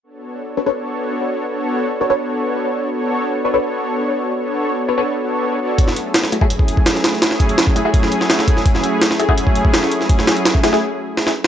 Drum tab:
HH |----------------|----------------|----------------|----------------|
SD |----------------|----------------|----------------|----------------|
BD |----------------|----------------|----------------|----------------|

HH |x-x-x-x-x-x-x-x-|x-xxx-x-x-x-x-x-|x-x-x-x-x-x-x-x-|x-xxx-x---------|
SD |-o--oo------oooo|oo--o----o-ooo-o|-o--oo------oo-o|-oo-o-oo----oo--|
BD |o------o-o-o----|--o--o--o-----o-|o------o-o-o----|o----o----------|